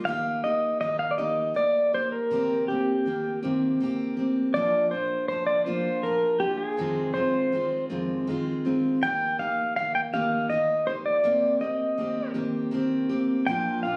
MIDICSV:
0, 0, Header, 1, 3, 480
1, 0, Start_track
1, 0, Key_signature, -3, "major"
1, 0, Tempo, 744417
1, 46, Time_signature, 6, 3, 24, 8
1, 9006, End_track
2, 0, Start_track
2, 0, Title_t, "Pedal steel guitar"
2, 0, Program_c, 0, 26
2, 33, Note_on_c, 0, 77, 87
2, 262, Note_off_c, 0, 77, 0
2, 283, Note_on_c, 0, 75, 81
2, 508, Note_off_c, 0, 75, 0
2, 521, Note_on_c, 0, 75, 76
2, 637, Note_off_c, 0, 75, 0
2, 639, Note_on_c, 0, 77, 80
2, 715, Note_on_c, 0, 74, 59
2, 718, Note_off_c, 0, 77, 0
2, 761, Note_on_c, 0, 75, 78
2, 764, Note_off_c, 0, 74, 0
2, 1008, Note_on_c, 0, 74, 78
2, 1011, Note_off_c, 0, 75, 0
2, 1251, Note_off_c, 0, 74, 0
2, 1254, Note_on_c, 0, 72, 76
2, 1368, Note_on_c, 0, 70, 76
2, 1374, Note_off_c, 0, 72, 0
2, 1702, Note_off_c, 0, 70, 0
2, 1729, Note_on_c, 0, 67, 72
2, 2182, Note_off_c, 0, 67, 0
2, 2927, Note_on_c, 0, 74, 93
2, 3150, Note_off_c, 0, 74, 0
2, 3166, Note_on_c, 0, 72, 90
2, 3399, Note_off_c, 0, 72, 0
2, 3407, Note_on_c, 0, 72, 87
2, 3521, Note_off_c, 0, 72, 0
2, 3524, Note_on_c, 0, 74, 90
2, 3639, Note_off_c, 0, 74, 0
2, 3642, Note_on_c, 0, 72, 79
2, 3889, Note_on_c, 0, 70, 79
2, 3892, Note_off_c, 0, 72, 0
2, 4111, Note_off_c, 0, 70, 0
2, 4126, Note_on_c, 0, 67, 72
2, 4238, Note_on_c, 0, 68, 71
2, 4250, Note_off_c, 0, 67, 0
2, 4602, Note_on_c, 0, 72, 81
2, 4613, Note_off_c, 0, 68, 0
2, 5059, Note_off_c, 0, 72, 0
2, 5821, Note_on_c, 0, 79, 93
2, 6037, Note_off_c, 0, 79, 0
2, 6057, Note_on_c, 0, 77, 90
2, 6275, Note_off_c, 0, 77, 0
2, 6296, Note_on_c, 0, 77, 86
2, 6403, Note_off_c, 0, 77, 0
2, 6416, Note_on_c, 0, 79, 88
2, 6448, Note_off_c, 0, 79, 0
2, 6536, Note_on_c, 0, 77, 81
2, 6767, Note_on_c, 0, 75, 81
2, 6778, Note_off_c, 0, 77, 0
2, 7008, Note_on_c, 0, 72, 74
2, 7013, Note_off_c, 0, 75, 0
2, 7041, Note_off_c, 0, 72, 0
2, 7129, Note_on_c, 0, 74, 78
2, 7462, Note_off_c, 0, 74, 0
2, 7486, Note_on_c, 0, 75, 79
2, 7939, Note_off_c, 0, 75, 0
2, 8682, Note_on_c, 0, 79, 90
2, 8914, Note_off_c, 0, 79, 0
2, 8917, Note_on_c, 0, 77, 80
2, 9006, Note_off_c, 0, 77, 0
2, 9006, End_track
3, 0, Start_track
3, 0, Title_t, "Steel-string acoustic guitar"
3, 0, Program_c, 1, 25
3, 41, Note_on_c, 1, 51, 60
3, 45, Note_on_c, 1, 58, 63
3, 49, Note_on_c, 1, 63, 63
3, 54, Note_on_c, 1, 67, 75
3, 276, Note_off_c, 1, 67, 0
3, 284, Note_off_c, 1, 51, 0
3, 284, Note_on_c, 1, 67, 49
3, 286, Note_off_c, 1, 58, 0
3, 286, Note_off_c, 1, 63, 0
3, 293, Note_on_c, 1, 63, 42
3, 303, Note_on_c, 1, 58, 40
3, 520, Note_on_c, 1, 51, 44
3, 521, Note_off_c, 1, 58, 0
3, 524, Note_off_c, 1, 63, 0
3, 525, Note_off_c, 1, 67, 0
3, 529, Note_on_c, 1, 58, 51
3, 532, Note_on_c, 1, 63, 55
3, 540, Note_on_c, 1, 67, 52
3, 754, Note_off_c, 1, 67, 0
3, 760, Note_off_c, 1, 63, 0
3, 762, Note_on_c, 1, 67, 62
3, 763, Note_off_c, 1, 51, 0
3, 765, Note_off_c, 1, 58, 0
3, 767, Note_on_c, 1, 63, 57
3, 773, Note_on_c, 1, 58, 48
3, 777, Note_on_c, 1, 51, 44
3, 987, Note_off_c, 1, 51, 0
3, 995, Note_on_c, 1, 51, 54
3, 998, Note_off_c, 1, 58, 0
3, 1003, Note_off_c, 1, 63, 0
3, 1004, Note_off_c, 1, 67, 0
3, 1006, Note_on_c, 1, 58, 55
3, 1010, Note_on_c, 1, 63, 49
3, 1016, Note_on_c, 1, 67, 59
3, 1237, Note_off_c, 1, 67, 0
3, 1241, Note_off_c, 1, 51, 0
3, 1245, Note_on_c, 1, 67, 45
3, 1246, Note_off_c, 1, 58, 0
3, 1247, Note_off_c, 1, 63, 0
3, 1255, Note_on_c, 1, 63, 45
3, 1265, Note_on_c, 1, 58, 38
3, 1486, Note_off_c, 1, 67, 0
3, 1486, Note_on_c, 1, 48, 63
3, 1488, Note_off_c, 1, 58, 0
3, 1491, Note_off_c, 1, 63, 0
3, 1491, Note_on_c, 1, 51, 69
3, 1495, Note_on_c, 1, 58, 64
3, 1500, Note_on_c, 1, 60, 73
3, 1504, Note_on_c, 1, 67, 70
3, 1724, Note_off_c, 1, 67, 0
3, 1727, Note_off_c, 1, 48, 0
3, 1729, Note_off_c, 1, 51, 0
3, 1731, Note_off_c, 1, 58, 0
3, 1732, Note_on_c, 1, 67, 46
3, 1733, Note_off_c, 1, 60, 0
3, 1743, Note_on_c, 1, 60, 44
3, 1751, Note_on_c, 1, 58, 37
3, 1969, Note_off_c, 1, 67, 0
3, 1971, Note_on_c, 1, 51, 49
3, 1972, Note_off_c, 1, 58, 0
3, 1975, Note_off_c, 1, 60, 0
3, 1980, Note_on_c, 1, 58, 55
3, 1984, Note_on_c, 1, 60, 54
3, 1992, Note_on_c, 1, 67, 54
3, 2201, Note_off_c, 1, 67, 0
3, 2207, Note_off_c, 1, 60, 0
3, 2209, Note_off_c, 1, 51, 0
3, 2209, Note_on_c, 1, 67, 65
3, 2210, Note_off_c, 1, 58, 0
3, 2215, Note_on_c, 1, 60, 57
3, 2218, Note_on_c, 1, 58, 52
3, 2222, Note_on_c, 1, 48, 53
3, 2223, Note_on_c, 1, 51, 56
3, 2446, Note_off_c, 1, 51, 0
3, 2448, Note_off_c, 1, 67, 0
3, 2451, Note_off_c, 1, 60, 0
3, 2452, Note_off_c, 1, 58, 0
3, 2453, Note_on_c, 1, 51, 61
3, 2454, Note_off_c, 1, 48, 0
3, 2460, Note_on_c, 1, 58, 62
3, 2468, Note_on_c, 1, 60, 59
3, 2473, Note_on_c, 1, 67, 68
3, 2679, Note_off_c, 1, 67, 0
3, 2687, Note_on_c, 1, 67, 57
3, 2690, Note_off_c, 1, 51, 0
3, 2691, Note_off_c, 1, 60, 0
3, 2693, Note_off_c, 1, 58, 0
3, 2699, Note_on_c, 1, 60, 47
3, 2709, Note_on_c, 1, 58, 45
3, 2927, Note_off_c, 1, 67, 0
3, 2931, Note_on_c, 1, 46, 71
3, 2933, Note_off_c, 1, 58, 0
3, 2933, Note_off_c, 1, 60, 0
3, 2936, Note_on_c, 1, 53, 67
3, 2940, Note_on_c, 1, 58, 72
3, 2944, Note_on_c, 1, 62, 71
3, 2946, Note_on_c, 1, 65, 77
3, 3160, Note_off_c, 1, 65, 0
3, 3168, Note_on_c, 1, 65, 47
3, 3169, Note_off_c, 1, 46, 0
3, 3170, Note_off_c, 1, 62, 0
3, 3172, Note_off_c, 1, 53, 0
3, 3174, Note_off_c, 1, 58, 0
3, 3178, Note_on_c, 1, 62, 42
3, 3189, Note_on_c, 1, 58, 40
3, 3407, Note_off_c, 1, 65, 0
3, 3412, Note_off_c, 1, 62, 0
3, 3414, Note_off_c, 1, 58, 0
3, 3414, Note_on_c, 1, 53, 51
3, 3422, Note_on_c, 1, 58, 52
3, 3428, Note_on_c, 1, 62, 56
3, 3435, Note_on_c, 1, 65, 59
3, 3642, Note_off_c, 1, 65, 0
3, 3645, Note_off_c, 1, 62, 0
3, 3650, Note_off_c, 1, 53, 0
3, 3650, Note_off_c, 1, 58, 0
3, 3650, Note_on_c, 1, 65, 56
3, 3652, Note_on_c, 1, 62, 56
3, 3658, Note_on_c, 1, 58, 54
3, 3659, Note_on_c, 1, 53, 53
3, 3662, Note_on_c, 1, 46, 52
3, 3882, Note_off_c, 1, 53, 0
3, 3888, Note_off_c, 1, 65, 0
3, 3890, Note_off_c, 1, 62, 0
3, 3890, Note_on_c, 1, 53, 53
3, 3892, Note_off_c, 1, 58, 0
3, 3894, Note_off_c, 1, 46, 0
3, 3899, Note_on_c, 1, 58, 56
3, 3905, Note_on_c, 1, 62, 62
3, 3911, Note_on_c, 1, 65, 54
3, 4118, Note_off_c, 1, 65, 0
3, 4125, Note_on_c, 1, 65, 47
3, 4127, Note_off_c, 1, 62, 0
3, 4128, Note_off_c, 1, 53, 0
3, 4133, Note_off_c, 1, 58, 0
3, 4135, Note_on_c, 1, 62, 43
3, 4147, Note_on_c, 1, 58, 41
3, 4366, Note_off_c, 1, 65, 0
3, 4367, Note_on_c, 1, 41, 62
3, 4371, Note_off_c, 1, 62, 0
3, 4374, Note_on_c, 1, 48, 67
3, 4375, Note_off_c, 1, 58, 0
3, 4376, Note_on_c, 1, 51, 72
3, 4377, Note_on_c, 1, 56, 73
3, 4383, Note_on_c, 1, 60, 73
3, 4384, Note_on_c, 1, 65, 71
3, 4600, Note_off_c, 1, 65, 0
3, 4607, Note_off_c, 1, 41, 0
3, 4608, Note_off_c, 1, 60, 0
3, 4608, Note_on_c, 1, 65, 45
3, 4610, Note_off_c, 1, 48, 0
3, 4611, Note_off_c, 1, 51, 0
3, 4612, Note_off_c, 1, 56, 0
3, 4615, Note_on_c, 1, 60, 49
3, 4624, Note_on_c, 1, 56, 41
3, 4632, Note_on_c, 1, 51, 41
3, 4842, Note_off_c, 1, 51, 0
3, 4847, Note_off_c, 1, 65, 0
3, 4848, Note_off_c, 1, 56, 0
3, 4850, Note_on_c, 1, 51, 49
3, 4851, Note_off_c, 1, 60, 0
3, 4856, Note_on_c, 1, 56, 52
3, 4865, Note_on_c, 1, 60, 59
3, 4869, Note_on_c, 1, 65, 54
3, 5083, Note_off_c, 1, 65, 0
3, 5086, Note_off_c, 1, 60, 0
3, 5088, Note_off_c, 1, 51, 0
3, 5091, Note_off_c, 1, 56, 0
3, 5091, Note_on_c, 1, 65, 60
3, 5094, Note_on_c, 1, 60, 58
3, 5098, Note_on_c, 1, 56, 52
3, 5100, Note_on_c, 1, 51, 53
3, 5104, Note_on_c, 1, 41, 51
3, 5105, Note_on_c, 1, 48, 51
3, 5327, Note_off_c, 1, 51, 0
3, 5329, Note_off_c, 1, 65, 0
3, 5330, Note_off_c, 1, 60, 0
3, 5332, Note_off_c, 1, 56, 0
3, 5334, Note_on_c, 1, 51, 60
3, 5335, Note_off_c, 1, 41, 0
3, 5336, Note_off_c, 1, 48, 0
3, 5341, Note_on_c, 1, 56, 62
3, 5346, Note_on_c, 1, 60, 58
3, 5354, Note_on_c, 1, 65, 69
3, 5569, Note_off_c, 1, 65, 0
3, 5570, Note_off_c, 1, 51, 0
3, 5574, Note_off_c, 1, 56, 0
3, 5576, Note_off_c, 1, 60, 0
3, 5577, Note_on_c, 1, 65, 55
3, 5583, Note_on_c, 1, 60, 51
3, 5590, Note_on_c, 1, 56, 49
3, 5598, Note_on_c, 1, 51, 48
3, 5809, Note_off_c, 1, 51, 0
3, 5811, Note_off_c, 1, 65, 0
3, 5814, Note_off_c, 1, 60, 0
3, 5817, Note_off_c, 1, 56, 0
3, 5817, Note_on_c, 1, 51, 60
3, 5820, Note_on_c, 1, 58, 71
3, 5827, Note_on_c, 1, 63, 70
3, 5827, Note_on_c, 1, 67, 78
3, 6046, Note_off_c, 1, 67, 0
3, 6051, Note_off_c, 1, 51, 0
3, 6053, Note_off_c, 1, 58, 0
3, 6054, Note_on_c, 1, 67, 48
3, 6056, Note_off_c, 1, 63, 0
3, 6065, Note_on_c, 1, 63, 45
3, 6076, Note_on_c, 1, 58, 41
3, 6290, Note_off_c, 1, 67, 0
3, 6295, Note_off_c, 1, 63, 0
3, 6298, Note_off_c, 1, 58, 0
3, 6298, Note_on_c, 1, 51, 48
3, 6306, Note_on_c, 1, 58, 54
3, 6314, Note_on_c, 1, 63, 56
3, 6317, Note_on_c, 1, 67, 55
3, 6526, Note_off_c, 1, 67, 0
3, 6530, Note_off_c, 1, 63, 0
3, 6532, Note_off_c, 1, 51, 0
3, 6534, Note_on_c, 1, 67, 65
3, 6536, Note_off_c, 1, 58, 0
3, 6538, Note_on_c, 1, 63, 60
3, 6544, Note_on_c, 1, 58, 54
3, 6547, Note_on_c, 1, 51, 49
3, 6762, Note_off_c, 1, 51, 0
3, 6769, Note_off_c, 1, 67, 0
3, 6769, Note_on_c, 1, 51, 51
3, 6772, Note_off_c, 1, 58, 0
3, 6772, Note_off_c, 1, 63, 0
3, 6780, Note_on_c, 1, 58, 56
3, 6784, Note_on_c, 1, 63, 58
3, 6793, Note_on_c, 1, 67, 61
3, 6998, Note_off_c, 1, 67, 0
3, 7006, Note_on_c, 1, 67, 47
3, 7007, Note_off_c, 1, 51, 0
3, 7012, Note_off_c, 1, 63, 0
3, 7013, Note_off_c, 1, 58, 0
3, 7020, Note_on_c, 1, 63, 45
3, 7028, Note_on_c, 1, 58, 38
3, 7244, Note_off_c, 1, 58, 0
3, 7245, Note_off_c, 1, 67, 0
3, 7245, Note_on_c, 1, 48, 76
3, 7245, Note_on_c, 1, 51, 72
3, 7251, Note_off_c, 1, 63, 0
3, 7252, Note_on_c, 1, 58, 73
3, 7254, Note_on_c, 1, 60, 75
3, 7259, Note_on_c, 1, 67, 70
3, 7475, Note_off_c, 1, 67, 0
3, 7482, Note_on_c, 1, 67, 49
3, 7485, Note_off_c, 1, 48, 0
3, 7485, Note_off_c, 1, 51, 0
3, 7486, Note_off_c, 1, 60, 0
3, 7488, Note_off_c, 1, 58, 0
3, 7494, Note_on_c, 1, 60, 46
3, 7503, Note_on_c, 1, 58, 37
3, 7718, Note_off_c, 1, 58, 0
3, 7721, Note_on_c, 1, 51, 53
3, 7723, Note_off_c, 1, 60, 0
3, 7723, Note_off_c, 1, 67, 0
3, 7725, Note_on_c, 1, 58, 60
3, 7731, Note_on_c, 1, 60, 60
3, 7740, Note_on_c, 1, 67, 63
3, 7950, Note_off_c, 1, 67, 0
3, 7955, Note_off_c, 1, 60, 0
3, 7957, Note_off_c, 1, 58, 0
3, 7958, Note_on_c, 1, 67, 57
3, 7960, Note_off_c, 1, 51, 0
3, 7962, Note_on_c, 1, 60, 57
3, 7965, Note_on_c, 1, 58, 56
3, 7968, Note_on_c, 1, 51, 56
3, 7973, Note_on_c, 1, 48, 49
3, 8189, Note_off_c, 1, 51, 0
3, 8197, Note_off_c, 1, 58, 0
3, 8197, Note_on_c, 1, 51, 66
3, 8201, Note_off_c, 1, 67, 0
3, 8203, Note_off_c, 1, 60, 0
3, 8204, Note_on_c, 1, 58, 66
3, 8208, Note_off_c, 1, 48, 0
3, 8213, Note_on_c, 1, 60, 70
3, 8218, Note_on_c, 1, 67, 61
3, 8435, Note_off_c, 1, 67, 0
3, 8440, Note_off_c, 1, 51, 0
3, 8442, Note_on_c, 1, 67, 61
3, 8444, Note_off_c, 1, 58, 0
3, 8448, Note_off_c, 1, 60, 0
3, 8455, Note_on_c, 1, 60, 53
3, 8464, Note_on_c, 1, 58, 48
3, 8683, Note_off_c, 1, 67, 0
3, 8687, Note_on_c, 1, 46, 71
3, 8688, Note_off_c, 1, 58, 0
3, 8689, Note_off_c, 1, 60, 0
3, 8690, Note_on_c, 1, 53, 65
3, 8696, Note_on_c, 1, 58, 77
3, 8702, Note_on_c, 1, 62, 76
3, 8703, Note_on_c, 1, 65, 81
3, 8921, Note_off_c, 1, 65, 0
3, 8925, Note_off_c, 1, 46, 0
3, 8926, Note_off_c, 1, 53, 0
3, 8929, Note_off_c, 1, 58, 0
3, 8929, Note_on_c, 1, 65, 52
3, 8930, Note_off_c, 1, 62, 0
3, 8938, Note_on_c, 1, 62, 45
3, 8947, Note_on_c, 1, 58, 43
3, 9006, Note_off_c, 1, 58, 0
3, 9006, Note_off_c, 1, 62, 0
3, 9006, Note_off_c, 1, 65, 0
3, 9006, End_track
0, 0, End_of_file